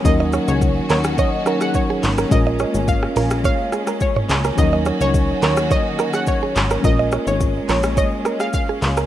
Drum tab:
HH |------o-------o-|------o-------o-|------o-------o-|------o-------o-|
SH |x-xxx-xxx-xxx-xx|x-xxx-xxx-xxx-xx|x-xxx-xxx-xxx-xx|x-xxx-xxx-xxx-xx|
CP |------x-------x-|--------------x-|------x-------x-|------x-------x-|
SD |--r----r--rr---r|--r--r-r--rr---r|--r----r--rr---r|--r----r--rr---r|
T2 |----------------|-------------o--|----------------|----------------|
BD |o---o---o---o---|o---o---o---o---|o---o---o---o---|o---o---o---o---|